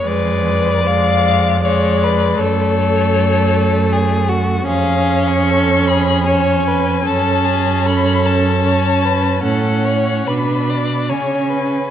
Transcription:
X:1
M:3/4
L:1/16
Q:1/4=76
K:F#m
V:1 name="Violin"
_c4 =f4 d4 | c8- c2 z2 | ^e3 c'3 b2 g4 | a4 b2 a6 |
f4 b4 g4 |]
V:2 name="Violin"
d8 c2 _c2 | A8 G2 F2 | G4 A2 G2 c2 B2 | A2 G2 A4 c2 B2 |
A2 c2 B2 d2 c2 B2 |]
V:3 name="Viola"
_A,4 A,4 A,4 | A,12 | C8 C4 | C12 |
C4 D4 C4 |]
V:4 name="Cello" clef=bass
=F,,12 | F,,12 | ^E,,12 | F,,12 |
A,,4 B,,4 C,4 |]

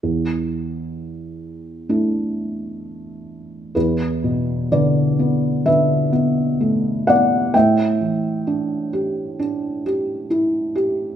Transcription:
X:1
M:4/4
L:1/8
Q:1/4=64
K:Edor
V:1 name="Felt piano"
z8 | [EB]2 [Bd]2 [Be]3 [df] | [eg]6 z2 |]
V:2 name="Felt piano"
E,,4 [A,DE]4 | E,, B,, D, B, D, B, A, B, | A,, E, D G D G E G |]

